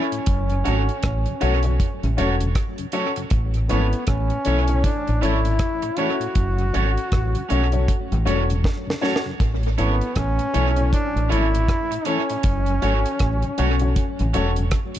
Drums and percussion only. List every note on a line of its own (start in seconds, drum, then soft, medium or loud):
0.12 closed hi-hat medium
0.26 kick loud
0.26 closed hi-hat loud
0.50 closed hi-hat soft
0.65 closed hi-hat medium
0.89 closed hi-hat soft
1.03 kick loud
1.03 cross-stick loud
1.03 closed hi-hat medium
1.26 closed hi-hat soft
1.41 closed hi-hat medium
1.63 closed hi-hat soft
1.80 kick loud
1.80 closed hi-hat medium
2.03 closed hi-hat soft
2.18 closed hi-hat medium
2.40 closed hi-hat medium
2.55 kick loud
2.55 cross-stick loud
2.55 closed hi-hat medium
2.78 closed hi-hat medium
2.92 closed hi-hat medium
3.16 closed hi-hat soft
3.30 kick loud
3.30 closed hi-hat medium
3.54 closed hi-hat soft
3.69 closed hi-hat medium
3.93 closed hi-hat soft
4.07 kick loud
4.07 cross-stick loud
4.07 closed hi-hat medium
4.30 closed hi-hat soft
4.45 closed hi-hat medium
4.67 closed hi-hat soft
4.84 kick loud
4.84 closed hi-hat loud
5.07 closed hi-hat soft
5.23 closed hi-hat medium
5.45 closed hi-hat medium
5.59 kick loud
5.59 cross-stick loud
5.59 closed hi-hat medium
5.82 closed hi-hat medium
5.97 closed hi-hat medium
6.21 closed hi-hat medium
6.35 kick loud
6.35 closed hi-hat loud
6.58 closed hi-hat soft
6.74 closed hi-hat medium
6.97 closed hi-hat soft
7.12 kick loud
7.12 cross-stick loud
7.12 closed hi-hat medium
7.35 closed hi-hat soft
7.50 closed hi-hat medium
7.72 closed hi-hat soft
7.88 kick loud
7.88 closed hi-hat loud
8.12 closed hi-hat soft
8.27 closed hi-hat medium
8.50 closed hi-hat medium
8.64 kick loud
8.64 snare medium
8.90 snare medium
9.03 snare medium
9.16 snare medium
9.40 kick loud
9.40 closed hi-hat medium
9.63 closed hi-hat soft
9.78 closed hi-hat medium
10.01 closed hi-hat soft
10.16 kick medium
10.16 cross-stick loud
10.16 closed hi-hat medium
10.39 closed hi-hat soft
10.54 closed hi-hat medium
10.76 closed hi-hat soft
10.93 kick loud
10.93 closed hi-hat loud
11.17 closed hi-hat soft
11.32 closed hi-hat medium
11.55 closed hi-hat medium
11.68 kick loud
11.68 cross-stick loud
11.68 closed hi-hat medium
11.92 closed hi-hat medium
12.05 closed hi-hat medium
12.29 closed hi-hat medium
12.43 kick loud
12.43 closed hi-hat medium
12.66 closed hi-hat soft
12.82 closed hi-hat medium
13.06 closed hi-hat medium
13.19 kick loud
13.19 cross-stick loud
13.19 closed hi-hat medium
13.42 closed hi-hat soft
13.58 closed hi-hat medium
13.79 closed hi-hat soft
13.96 kick loud
13.96 closed hi-hat medium
14.19 closed hi-hat soft
14.34 closed hi-hat medium
14.56 closed hi-hat medium
14.71 kick medium
14.71 cross-stick loud
14.71 closed hi-hat medium
14.94 closed hi-hat medium